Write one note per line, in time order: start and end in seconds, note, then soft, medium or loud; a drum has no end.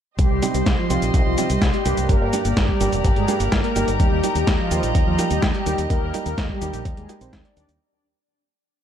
0.18 0.27 C2 loud
0.18 0.45 G3 medium
0.18 7.77 G4 medium
0.18 0.45 G4 loud
0.18 2.07 C5 medium
0.18 2.07 D#5 medium
0.18 2.07 C6 medium
0.18 kick loud
0.18 closed hi-hat medium
0.18 cabasa soft
0.31 0.39 C2 medium
0.42 0.55 C3 medium
0.42 0.55 G3 medium
0.42 0.55 C4 medium
0.42 0.55 D#4 medium
0.42 0.55 G4 loud
0.42 closed hi-hat medium
0.42 cabasa medium
0.54 0.63 C2 medium
0.54 0.72 G3 medium
0.54 0.72 G4 medium
0.54 closed hi-hat medium
0.54 cabasa soft
0.66 0.75 C2 loud
0.66 kick loud
0.66 snare loud
0.66 closed hi-hat medium
0.66 cabasa soft
0.78 1.13 F3 medium
0.78 1.13 F4 loud
0.90 0.98 C2 medium
0.90 1.35 C3 medium
0.90 1.35 G3 medium
0.90 1.35 C4 medium
0.90 1.35 D#4 medium
0.90 1.35 G4 medium
0.90 closed hi-hat medium
0.90 cabasa medium
1.02 1.10 A#1 medium
1.02 closed hi-hat medium
1.02 cabasa soft
1.14 1.22 C2 loud
1.14 kick loud
1.14 closed hi-hat medium
1.14 cabasa soft
1.26 1.34 C2 medium
1.26 1.43 F3 medium
1.26 1.43 F4 medium
1.38 1.50 C3 medium
1.38 1.50 G3 medium
1.38 1.50 C4 medium
1.38 1.50 D#4 medium
1.38 1.50 G4 loud
1.38 closed hi-hat medium
1.38 cabasa medium
1.50 1.58 C2 medium
1.50 1.67 G3 medium
1.50 1.67 G4 medium
1.50 closed hi-hat medium
1.50 cabasa soft
1.62 1.70 C2 loud
1.62 kick loud
1.62 snare loud
1.62 closed hi-hat medium
1.62 cabasa soft
1.74 2.00 G3 medium
1.74 2.00 G4 loud
1.74 closed hi-hat soft
1.85 1.94 C2 medium
1.85 2.30 G2 loud
1.85 2.30 G3 medium
1.85 2.30 A#3 medium
1.85 2.30 D4 medium
1.85 2.30 G4 loud
1.85 closed hi-hat medium
1.85 cabasa medium
1.97 2.06 C2 medium
1.97 closed hi-hat medium
1.97 cabasa soft
2.09 2.18 G1 loud
2.09 2.35 A#3 medium
2.09 7.77 A#4 medium
2.09 2.35 A#4 loud
2.09 3.98 D5 medium
2.09 7.77 A#5 medium
2.09 kick loud
2.09 closed hi-hat medium
2.09 cabasa soft
2.21 2.30 G1 medium
2.33 2.45 G2 loud
2.33 2.45 G3 medium
2.33 2.45 A#3 medium
2.33 2.45 D4 medium
2.33 2.45 G4 loud
2.33 closed hi-hat medium
2.33 cabasa medium
2.45 2.53 G1 medium
2.45 2.62 A#3 medium
2.45 2.62 A#4 medium
2.45 closed hi-hat medium
2.45 cabasa soft
2.57 2.65 G1 loud
2.57 kick loud
2.57 snare loud
2.57 closed hi-hat medium
2.57 cabasa soft
2.69 3.03 G3 medium
2.69 3.03 G4 loud
2.69 kick medium
2.81 2.89 G1 medium
2.81 3.25 G2 medium
2.81 3.25 G3 medium
2.81 3.25 A#3 medium
2.81 3.25 D4 medium
2.81 3.25 G4 medium
2.81 closed hi-hat medium
2.81 cabasa medium
2.92 3.01 F1 medium
2.92 closed hi-hat medium
2.92 cabasa soft
3.04 3.13 G1 loud
3.04 kick loud
3.04 closed hi-hat medium
3.04 cabasa soft
3.16 3.25 G1 medium
3.16 3.34 G#3 medium
3.16 3.34 G#4 medium
3.16 closed hi-hat soft
3.28 3.40 G2 loud
3.28 3.40 G3 medium
3.28 3.40 A#3 medium
3.28 3.40 D4 medium
3.28 3.40 G4 loud
3.28 closed hi-hat medium
3.28 cabasa medium
3.40 3.48 G1 medium
3.40 3.58 A#3 medium
3.40 3.58 A#4 medium
3.40 closed hi-hat medium
3.40 cabasa soft
3.52 3.61 G1 loud
3.52 kick loud
3.52 snare loud
3.52 closed hi-hat medium
3.52 cabasa soft
3.64 3.90 A#3 medium
3.64 3.90 A#4 loud
3.64 closed hi-hat soft
3.76 3.84 G1 loud
3.76 4.21 G3 loud
3.76 4.21 A#3 medium
3.76 4.21 D#4 medium
3.76 4.21 G4 loud
3.76 closed hi-hat medium
3.76 cabasa medium
3.88 3.96 G1 medium
3.88 closed hi-hat medium
3.88 cabasa soft
4.00 4.08 D#2 loud
4.00 4.26 G3 medium
4.00 4.26 G4 loud
4.00 7.77 D#5 medium
4.00 kick loud
4.00 closed hi-hat medium
4.00 cabasa soft
4.12 4.20 D#2 medium
4.24 4.36 G3 medium
4.24 4.36 A#3 medium
4.24 4.36 D#4 medium
4.24 4.36 G4 loud
4.24 closed hi-hat medium
4.24 cabasa medium
4.35 4.44 D#2 medium
4.35 4.53 G3 medium
4.35 4.53 G4 medium
4.35 closed hi-hat medium
4.35 cabasa soft
4.47 4.56 D#2 loud
4.47 kick loud
4.47 snare loud
4.47 closed hi-hat medium
4.47 cabasa soft
4.59 4.94 F3 medium
4.59 4.94 F4 loud
4.71 4.79 D#2 medium
4.71 5.16 G3 medium
4.71 5.16 A#3 medium
4.71 5.16 D#4 medium
4.71 5.16 G4 medium
4.71 closed hi-hat medium
4.71 cabasa medium
4.83 4.91 A#1 medium
4.83 closed hi-hat medium
4.83 cabasa soft
4.95 5.03 D#2 loud
4.95 kick loud
4.95 closed hi-hat medium
4.95 cabasa soft
5.07 5.15 D#2 medium
5.07 5.24 F3 medium
5.07 5.24 F4 medium
5.19 5.31 G3 loud
5.19 5.31 A#3 medium
5.19 5.31 D#4 medium
5.19 5.31 G4 loud
5.19 closed hi-hat medium
5.19 cabasa medium
5.30 5.39 D#2 medium
5.30 5.48 G3 medium
5.30 5.48 G4 medium
5.30 closed hi-hat medium
5.30 cabasa soft
5.42 5.51 D#2 loud
5.42 kick loud
5.42 snare loud
5.42 closed hi-hat medium
5.42 cabasa soft
5.54 5.80 G3 medium
5.54 5.80 G4 loud
5.54 closed hi-hat soft
5.66 5.75 D#2 loud
5.66 6.11 G3 loud
5.66 6.11 A#3 medium
5.66 6.11 D#4 medium
5.66 6.11 G4 loud
5.66 closed hi-hat medium
5.66 cabasa medium
5.78 5.87 D#2 medium
5.78 closed hi-hat medium
5.78 cabasa soft
5.90 5.99 D#2 loud
5.90 6.16 A#3 medium
5.90 6.16 A#4 loud
5.90 kick loud
5.90 closed hi-hat medium
5.90 cabasa soft
6.02 6.11 D#2 medium
6.14 6.26 G3 loud
6.14 6.26 A#3 medium
6.14 6.26 D#4 medium
6.14 6.26 G4 loud
6.14 closed hi-hat medium
6.14 cabasa medium
6.26 6.34 D#2 medium
6.26 6.43 A#3 medium
6.26 6.43 A#4 medium
6.26 closed hi-hat medium
6.26 cabasa soft
6.38 6.46 D#2 loud
6.38 kick loud
6.38 snare loud
6.38 closed hi-hat medium
6.38 cabasa soft
6.49 6.84 G3 medium
6.49 6.84 G4 loud
6.49 kick medium
6.61 6.70 D#2 medium
6.61 7.06 G3 medium
6.61 7.06 A#3 medium
6.61 7.06 D#4 medium
6.61 7.06 G4 medium
6.61 closed hi-hat medium
6.61 cabasa medium
6.73 6.82 A#1 medium
6.73 closed hi-hat medium
6.73 cabasa soft
6.85 6.94 D#2 loud
6.85 kick loud
6.85 closed hi-hat medium
6.85 cabasa soft
6.97 7.06 D#2 medium
6.97 7.14 G#3 medium
6.97 7.14 G#4 medium
6.97 closed hi-hat soft
7.09 7.54 G3 loud
7.09 7.54 A#3 medium
7.09 7.54 D#4 medium
7.09 7.54 G4 loud
7.09 closed hi-hat medium
7.09 cabasa medium
7.21 7.29 A#1 medium
7.21 7.38 C4 medium
7.21 7.38 C5 medium
7.21 closed hi-hat medium
7.21 cabasa soft
7.33 7.41 D#2 loud
7.33 kick loud
7.33 snare loud
7.33 closed hi-hat medium
7.33 cabasa soft
7.44 7.71 D4 medium
7.44 7.71 D5 loud
7.44 closed hi-hat soft
7.57 7.65 D#2 loud
7.57 7.79 G3 medium
7.57 7.79 A#3 medium
7.57 7.79 D#4 medium
7.57 7.79 G4 medium
7.57 closed hi-hat medium
7.57 cabasa medium
7.69 7.77 D#2 medium
7.69 closed hi-hat medium
7.69 cabasa soft